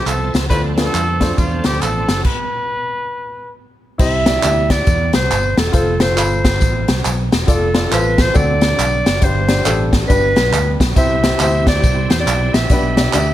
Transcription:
Already playing: F3 C4 A4 E5
0.06 C2 A4, clap, closed hi-hat, tambourine
0.34 C#2, snare, closed hi-hat, tambourine
0.49 D2 D3 E3 A3 C4 D4 F4 A4 B4 C5, kick, closed hi-hat, tambourine
0.56 F3
0.76 A3 D4 F4 A4 B4, snare, closed hi-hat, tambourine
0.94 F2, clap, closed hi-hat, tambourine
1.20 A3 D4 F4 C5, kick, snare, closed hi-hat, tambourine
1.38 E2 F4, kick, closed hi-hat, tambourine
1.64 D2 G4, snare, closed hi-hat, tambourine
1.81 A1 A4, clap, closed hi-hat, tambourine
2.08 F#1, snare, closed hi-hat, tambourine
2.24 B4, kick, crash
3.98 C2 C3 E4 G4 C5 E5, kick, crash, tambourine
4.26 E4 G4 D5, snare, closed hi-hat, tambourine
4.42 D2 D4 G4 D5, clap, closed hi-hat, tambourine
4.47 E4
4.70 D5, kick, snare, closed hi-hat, tambourine
4.87 E2, kick, closed hi-hat, tambourine
5.13 C2 C5, snare, closed hi-hat, tambourine
5.31 G1, clap, closed hi-hat, tambourine
5.57 E1 A4, snare, closed hi-hat, tambourine
5.72 F1 F4 A4 C5, kick, closed hi-hat, tambourine
6.00 F4 A4 C5, snare, closed hi-hat, tambourine
6.16 G1 F4 A4 B5, clap, closed hi-hat, tambourine
6.45 kick, snare, closed hi-hat, tambourine
6.61 A1, kick, closed hi-hat, tambourine
6.88 C2, snare, closed hi-hat, tambourine
7.05 B1, clap, closed hi-hat, tambourine
7.32 E1, snare, closed hi-hat, tambourine
7.47 F1 F4 A4 D5, kick, closed hi-hat, tambourine
7.74 F4 A4 D5, snare, closed hi-hat, tambourine
7.91 A1 F4 A4 B4 C5, clap, closed hi-hat, tambourine
8.18 C5, kick, snare, closed hi-hat, tambourine
8.34 D2 D3 C4 D4 F#4 A4 D5, kick, closed hi-hat, tambourine
8.61 snare, closed hi-hat, tambourine
8.79 B1, clap, closed hi-hat, tambourine
9.06 F#1, snare, closed hi-hat, tambourine
9.21 G1 G2 D4 G4 C5, kick, closed hi-hat, tambourine
9.49 D4 G4 D5, snare, closed hi-hat, tambourine
9.65 A1 D4 G4 A4, clap, closed hi-hat, tambourine
9.93 kick, snare, closed hi-hat, tambourine
10.07 G1 G2 D4 G4 B4, kick, closed hi-hat, tambourine
10.36 B1, snare, closed hi-hat, tambourine
10.52 D2, clap, closed hi-hat, tambourine
10.80 B1, kick, snare, closed hi-hat, tambourine
10.96 C2 C3 C4 E4 G4 C5 E5, kick, closed hi-hat, tambourine
11.24 E4 G4 C5, snare, closed hi-hat, tambourine
11.40 D2 E4 G4 C5 E5, clap, closed hi-hat, tambourine
11.67 D5, kick, snare, closed hi-hat, tambourine
11.84 C2, kick, closed hi-hat, tambourine
12.10 E2 C5, snare, closed hi-hat, tambourine
12.20 D5
12.27 B1, clap, closed hi-hat, tambourine
12.54 A#1 E5, snare, closed hi-hat, tambourine
12.70 B1 B2 A#3 D4 G4 B4, kick, closed hi-hat, tambourine
12.76 B3
12.97 D4 G4 D5, snare, closed hi-hat, tambourine
13.13 D2 D4 G4 D5 E5, clap, closed hi-hat, tambourine

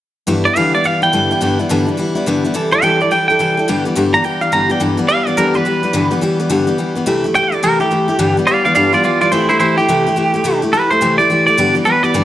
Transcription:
0.27 G2 D3 E3 G3 B3 E4
0.45 E3 G3 B3 E4 D5
0.56 G2 D3 E3 G3 B3 E4 F5
0.75 E3 G3 B3 E4 D5
0.84 E3 G3 B3 E4 F5
1.02 E3 G3 B3 E4 G5
1.13 G2 D3 E3 G3 B3 E4
1.31 E3 G3 B3 E4
1.41 G2 D3 E3 G3 B3 E4
1.59 E3 G3 B3 E4
1.69 G2 D3 E3 G3 B3 E4
1.87 E3 G3 B3 E4
1.97 E3 G3 B3 E4
2.15 E3 G3 B3 E4
2.26 G2 D3 E3 G3 B3 E4
2.44 E3 G3 B3 E4
2.54 C3 E3 G3 E4 A4
2.72 G3 E4 A4 D5
2.82 C3 E3 G3 E4 A4 G5
3.01 G3 E4 A4 D5
3.11 E3 G3 E4 A4 G5
3.28 G3 E4 A4 G5
3.39 C3 E3 G3 E4 A4
3.57 G3 E4 A4
3.68 G2 D3 E3 G3 B3 G4
3.85 E3 G3 B3 G4
3.96 G2 D3 E3 G3 B3 G4
4.13 E3 G3 B3 G4 A#5
4.24 E3 G3 B3 G4 G5
4.41 E3 G3 B3 G4 F5
4.52 G2 D3 E3 G3 B3 G4 A#5
4.69 E3 G3 B3 G4 G5
4.80 G2 D3 E3 G3 B3 G4
4.97 E3 G3 B3 G4
5.08 E3 G3 B3 G4 F5
5.27 E3 G3 B3 G4 D5
5.37 G2 D3 E3 G3 B3 G4 A#4
5.54 E3 G3 B3 G4 B4
5.65 E3 G3 B3 G4
5.83 E3 G3 B3 G4
5.93 G2 D3 E3 G3 B3 G4
6.11 E3 G3 B3 G4
6.21 E3 G3 B3 G4
6.40 E3 G3 B3 G4
6.50 G2 D3 E3 G3 B3 G4
6.67 E3 G3 B3 G4
6.78 E3 G3 B3 G4
6.95 E3 G3 B3 G4
7.06 C3 E3 A3 E4 G4
7.24 A3 E4 G4
7.35 E3 A3 E4 G4 G5
7.52 A3 E4 G4 D5
7.63 C3 E3 A3 E4 G4 A#4
7.80 A3 E4 G4
7.91 E3 A3 E4 G4
8.08 A3 E4 G4
8.19 G2 D3 E3 G3 B3 G4
8.37 E3 G3 B3 G4
8.47 E3 G3 B3 G4 D5 F5
8.65 E3 G3 B3 G4 D5 F5
8.75 G2 D3 E3 G3 B3 G4 D5 F5
8.93 E3 G3 B3 F4 G4 D5
9.03 E3 G3 B3 F4 G4 D5
9.21 E3 G3 B3 F4 G4 D5
9.32 C3 E3 A3 E4 G4 C5
9.49 A3 E4 G4 C5
9.59 E3 A3 E4 G4 C5
9.78 A3 E4 G4
9.89 C3 E3 A3 E4 G4
10.07 A3 E4 G4
10.16 E3 A3 E4 G4
10.34 A3 E4 G4
10.44 C3 E3 A3 E4 G4
10.62 A3 E4 G4
10.73 E3 A3 E4 G4 B4
10.91 A3 E4 G4 C5
11.01 C3 E3 A3 E4 G4
11.18 A3 E4 G4 D5
11.30 E3 A3 E4 G4
11.47 A3 E4 G4 D5
11.58 G2 D3 E3 G3 B3 G4
11.75 E3 G3 B3 G4
11.85 E3 G3 B3 G4 B4
12.03 E3 G3 B3 G4 D5
12.14 G2 D3 E3 G3 B3 G4

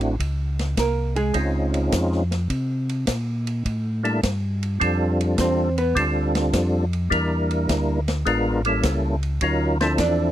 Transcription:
Already playing: A1 A3 C4 D4 E4 F#4
0.01 ride
0.20 C#2, kick, ride
0.59 snare, ride
0.77 C2 A#3 A#4, kick, snare, hi-hat pedal, ride
1.16 G#3 G#4, ride
1.34 C#2 G#3 C4 C#4 D#4 F4, kick, ride
1.74 ride
1.92 F2, kick, snare, hi-hat pedal, ride
2.12 snare
2.31 snare, ride
2.50 C3, kick, ride
2.89 ride
3.07 A#2, kick, snare, hi-hat pedal, ride
3.47 ride
3.65 A2, kick, ride
4.03 G3 A#3 D4 E4 A4, ride
4.23 G2, kick, snare, hi-hat pedal, ride
4.63 ride
4.80 F2 G3 C4 D4 F4 A4, kick, ride
5.21 ride
5.38 E2 C4 C5, kick, snare, hi-hat pedal, ride
5.78 B3 B4, ride
5.95 D2 G3 C4 D4 F4 A4, kick, ride
6.35 snare, ride
6.53 F2, kick, snare, hi-hat pedal, ride
6.93 ride
7.10 E2 G3 A#3 D4 E4 A#4, kick, ride
7.50 ride
7.69 D2, kick, snare, hi-hat pedal, ride
8.08 snare, ride
8.26 A1 G#3 B3 D4 F4 A#4, kick, ride
8.65 G3 A#3 C#4 E4 A4, ride
8.83 C#2, kick, snare, hi-hat pedal, ride
9.23 ride
9.41 D2 F#3 C#4 D#4 F4 A#4, kick, ride
9.81 F3 C4 D4 E4 A4, snare, ride
9.98 E2 D4 D5, kick, snare, hi-hat pedal, ride

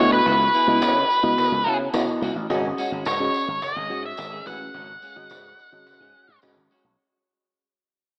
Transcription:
Already playing: B3
0.00 D2 E4 F#4 C#5 D#5
0.12 B4, muted clean electric guitar stroke, cajon slap
0.26 C#2 B3 E4 F#4, cajon bass, tambourine
0.41 cajon slap
0.54 B3 E4 G#4, cajon slap, tambourine
0.67 C#2 B3 E4 F#4 G#4 D#5
0.82 C#3, muted clean electric guitar stroke, cajon bass, cajon slap, tambourine
0.96 muted clean electric guitar stroke, cajon slap
1.10 cajon slap, tambourine
1.23 C#2 B3 E4 F#4 D#5, muted clean electric guitar stroke, cajon slap
1.38 muted clean electric guitar stroke, cajon bass, tambourine
1.52 C#2, muted clean electric guitar stroke, cajon slap
1.65 C#3 B3 E4 F#4, cajon slap
1.80 muted clean electric guitar stroke, cajon slap
1.93 C#3 B3 E4 F#4 D#5, cajon bass, cajon slap, tambourine
2.08 muted clean electric guitar stroke, cajon slap
2.22 C#2 B3 E4 F#4, cajon slap, tambourine
2.35 A1, muted clean electric guitar stroke, cajon slap
2.50 G#1 G#3 C#4 F#4 G#4 D#5, cajon bass, tambourine
2.64 cajon slap
2.78 G#3 C#4 F#4, cajon slap, tambourine
2.91 G#1 G#3 C#4 F#4, cajon slap
3.05 G#2 C#5, muted clean electric guitar stroke, cajon bass, cajon slap, tambourine
3.20 C#4 F#4 G#4 D#5, muted clean electric guitar stroke, cajon slap
3.34 cajon slap, tambourine
3.48 G#1, muted clean electric guitar stroke
3.62 D#5, muted clean electric guitar stroke, cajon bass, tambourine
3.76 G#1 G#3 C#4 G#4, cajon slap
3.90 G#2 G#3 C#4 F#4 G#4 D#5, cajon slap
4.04 E5, muted clean electric guitar stroke, cajon slap
4.17 G#1, muted clean electric guitar stroke, cajon bass, cajon slap, tambourine
4.32 G#3 C#4 G#4, cajon slap
4.46 A1 G#3 C#4 F#4 G#4 B4 F#5, tambourine
4.61 muted clean electric guitar stroke, cajon slap
4.74 G#1 G#3 C#4 F#4, cajon bass, tambourine
4.89 cajon slap
5.02 G#3 C#4 G#4, cajon slap, tambourine
5.16 G#1 G#3 C#4 F#4 G#4 D#5, cajon slap
5.30 G#2, muted clean electric guitar stroke, cajon bass, cajon slap, tambourine
5.44 muted clean electric guitar stroke, cajon slap
5.58 D#5, cajon slap, tambourine
5.72 G#1 C#4 F#4 G#4 D#5, muted clean electric guitar stroke
5.87 F#5, muted clean electric guitar stroke, cajon bass, tambourine
6.00 G#2 G#3 C#4 G#4, cajon slap
6.14 G#3 C#4 F#4 G#5, cajon slap
6.28 G#2, muted clean electric guitar stroke
6.42 G#2 C#4 F#4 G#4 D#5 B5, cajon bass, cajon slap, tambourine
6.56 G#1, muted clean electric guitar stroke, cajon slap
6.70 G#3 C#4 F#4 C#6, tambourine
6.84 B1, muted clean electric guitar stroke, cajon slap

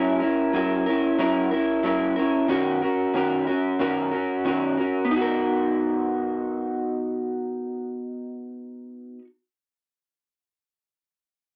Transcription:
Already playing: F#3 C#4 E4 A#4
0.20 C#4 E4 A#4
0.53 F#3 C#4 E4 A#4
0.86 C#4 E4 A#4
1.19 F#3 C#4 E4 A#4
1.51 C#4 E4 A#4
1.83 F#3 C#4 E4 A#4
2.16 C#4 E4 A#4
2.48 D#3 C#4 F#4 A#4
2.82 C#4 F#4 A#4
3.14 D#3 C#4 F#4 A#4
3.47 C#4 F#4 A#4
3.79 D#3 C#4 F#4 A#4
4.11 C#4 F#4 A#4
4.45 D#3 C#4 F#4 A#4
4.77 C#4 F#4 A#4
5.05 B3
5.11 D#4
5.16 F#4
5.21 A#4

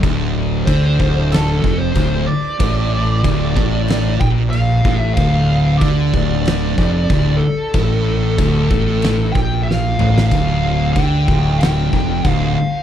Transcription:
0.03 D1 D2, kick, crash
0.66 D2 D3 C5, kick, crash
0.99 D1 D2, kick
1.32 A4, snare, crash
1.63 F1 F2, kick
1.79 C5
1.95 D1 D2, kick, crash
2.27 D5
2.60 A1 A2, kick, crash
3.23 D1 D2, kick, crash
3.56 A1 A2, kick
3.88 snare, crash
4.20 A#1 A#2 G5, kick
4.50 F5, crash
4.85 A1 A2, kick
4.98 E5
5.14 D1 D2 F5, kick, crash
5.78 D5, kick, crash
5.82 D2 D3
6.14 D1 D2, kick
6.42 D5, crash
6.48 snare
6.78 F1 F2, kick
7.10 D1 D2, kick, crash
7.37 A4
7.74 A1 A2, kick, crash
8.38 D1 D2, kick, crash
8.70 A1 A2, kick
9.02 snare, crash
9.32 A#1 A#2 G5, kick
9.63 F5
9.71 snare
9.99 A1 A2, mid tom
10.18 snare
10.27 F5
10.31 D1 D2, kick, crash
10.93 D2 D3 G5, kick, crash
11.28 D1 D2, kick
11.59 G5, snare, crash
11.91 F1 F2, kick
12.24 D1 D2, kick, crash
12.30 F5
12.55 F5

